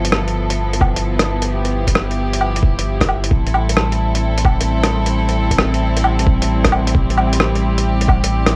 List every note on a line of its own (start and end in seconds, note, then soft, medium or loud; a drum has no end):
0.00 3.30 G1 medium
0.00 3.27 F3 medium
0.00 3.27 B3 medium
0.00 8.56 E4 medium
0.00 1.45 A4 medium
0.05 closed hi-hat medium
0.12 cross-stick loud
0.28 closed hi-hat soft
0.50 closed hi-hat medium
0.73 closed hi-hat soft
0.81 kick loud
0.81 low woodblock medium
0.96 closed hi-hat medium
1.19 cross-stick loud
1.19 closed hi-hat soft
1.42 closed hi-hat medium
1.50 3.30 G4 medium
1.65 closed hi-hat soft
1.87 kick medium
1.87 closed hi-hat medium
1.95 cross-stick loud
2.11 closed hi-hat soft
2.33 closed hi-hat medium
2.41 low woodblock medium
2.56 closed hi-hat soft
2.63 kick loud
2.79 closed hi-hat medium
3.01 kick medium
3.01 cross-stick loud
3.01 closed hi-hat soft
3.09 low woodblock medium
3.24 closed hi-hat medium
3.31 8.56 A1 medium
3.31 8.56 G3 medium
3.31 8.56 C4 medium
3.31 6.91 A4 medium
3.31 kick loud
3.46 closed hi-hat soft
3.54 low woodblock medium
3.69 closed hi-hat soft
3.77 cross-stick loud
3.92 closed hi-hat soft
4.15 closed hi-hat soft
4.38 closed hi-hat soft
4.45 kick loud
4.45 low woodblock medium
4.61 closed hi-hat medium
4.83 cross-stick loud
4.83 closed hi-hat soft
5.06 closed hi-hat soft
5.29 closed hi-hat soft
5.51 kick medium
5.51 closed hi-hat medium
5.58 cross-stick loud
5.74 closed hi-hat soft
5.97 closed hi-hat soft
6.04 low woodblock medium
6.19 closed hi-hat soft
6.27 kick loud
6.42 closed hi-hat soft
6.65 kick medium
6.65 cross-stick medium
6.65 closed hi-hat soft
6.72 low woodblock medium
6.87 closed hi-hat soft
6.95 8.56 G4 medium
6.95 kick loud
7.10 closed hi-hat soft
7.18 low woodblock medium
7.33 closed hi-hat medium
7.40 cross-stick loud
7.55 closed hi-hat soft
7.78 closed hi-hat medium
8.01 closed hi-hat soft
8.08 kick loud
8.08 low woodblock medium
8.24 closed hi-hat medium
8.46 cross-stick medium
8.46 closed hi-hat soft